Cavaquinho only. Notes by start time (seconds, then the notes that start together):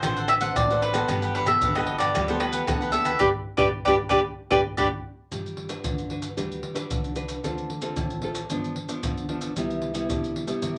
0.02 D4 A4 C5 F#5
0.16 A4 C5 F#5
0.29 muted cavaquinho stroke
0.41 A4 C5 F#5
0.70 A4 C5 F#5
0.81 D4 A4 C5 F#5
0.95 A4 C5 F#5
1.09 D4 G4 B4 F#5
1.22 G4 B4 F#5
1.35 D4 G4 B4 F#5
1.47 muted cavaquinho stroke
1.62 D4 G4 B4 F#5
1.76 G4 B4 F#5
2.00 G4 B4 F#5
2.16 D4 G4 B4 F#5
2.29 G4 B4 F#5
2.40 muted cavaquinho stroke
2.52 G4 B4 F#5
2.81 G4 B4 F#5
2.91 D4 G4 B4 F#5
3.04 G4 B4 F#5
3.19 G4 B4 D5
3.58 G4 B4 D5
3.87 G4 B4 D5
4.10 G4 B4 D5
4.51 G4 B4 D5
4.79 G4 B4 D5